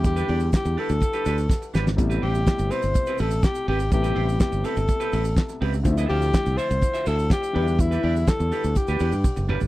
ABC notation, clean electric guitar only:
X:1
M:4/4
L:1/16
Q:1/4=124
K:Am
V:1 name="Clean electric guitar"
z [DGB] [DGd] z3 [DGB] z2 [DGB] [DGB] z3 [DGB] z | z [CGB] [CGc] z3 [CGB] z2 [CGB] [CGB] z3 [CGB] z | z [CGB] [CGc] z3 [CGB] z2 [CGB] [CGB] z3 [CGB] z | z [Fce] [Fcf] z3 [Fce] z2 [Fce] [Fce] z3 [DGB] z |
z [DGB] [DGd] z3 [DGB] z2 [DGB] [DGB] z3 [DGB] z |]